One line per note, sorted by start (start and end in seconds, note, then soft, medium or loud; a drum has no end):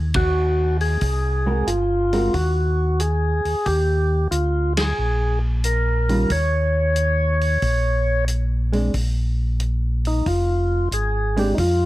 0.00 0.98 D#2 medium
0.14 0.77 F#4 loud
0.14 kick medium
0.14 ride medium
0.81 1.70 G#4 medium
0.81 open hi-hat soft
1.01 1.63 C2 medium
1.01 kick soft
1.01 open hi-hat soft
1.46 1.65 G#3 soft
1.46 1.66 C4 soft
1.46 1.65 F#4 medium
1.46 1.66 A#4 medium
1.67 2.29 G1 medium
1.67 2.35 F4 medium
1.67 closed hi-hat soft
2.13 2.31 G#3 soft
2.13 2.32 C4 medium
2.13 2.32 F#4 medium
2.13 2.32 A#4 medium
2.13 open hi-hat soft
2.33 3.41 D#2 medium
2.33 3.01 F#4 medium
2.33 kick soft
2.33 open hi-hat soft
3.00 3.68 G#4 medium
3.00 closed hi-hat soft
3.45 3.55 D#2 soft
3.45 open hi-hat soft
3.66 4.28 D#2 medium
3.66 4.28 G4 medium
3.66 kick soft
3.66 open hi-hat soft
4.31 4.94 D2 medium
4.31 4.73 F4 medium
4.31 closed hi-hat soft
4.77 5.39 G#4 medium
4.77 snare medium
4.77 ride medium
4.98 6.26 A#1 medium
5.64 6.32 A#4 medium
5.64 closed hi-hat medium
6.09 6.28 D#3 medium
6.09 6.28 G3 medium
6.09 6.28 C#4 medium
6.09 6.28 F4 medium
6.09 open hi-hat soft
6.30 7.58 D#2 medium
6.30 8.25 C#5 loud
6.30 kick soft
6.30 open hi-hat soft
6.96 closed hi-hat soft
7.41 open hi-hat soft
7.62 8.90 A#1 medium
7.62 kick soft
7.62 open hi-hat soft
8.28 closed hi-hat soft
8.73 8.91 G#3 medium
8.73 8.92 C4 soft
8.73 8.92 D4 medium
8.73 open hi-hat soft
8.94 10.22 A#1 medium
8.94 kick soft
8.94 open hi-hat soft
9.60 closed hi-hat soft
10.05 10.27 D#4 medium
10.05 open hi-hat soft
10.26 10.88 F1 medium
10.26 10.89 F4 medium
10.26 kick soft
10.26 open hi-hat soft
10.92 11.54 G#1 medium
10.92 11.39 G#4 medium
10.92 closed hi-hat soft
11.37 11.56 G#3 medium
11.37 11.56 C4 medium
11.37 11.56 D4 medium
11.37 11.55 G4 medium
11.37 open hi-hat soft
11.54 11.58 D#4 medium
11.54 kick soft
11.54 open hi-hat soft
11.58 11.86 F2 medium
11.58 11.86 F4 medium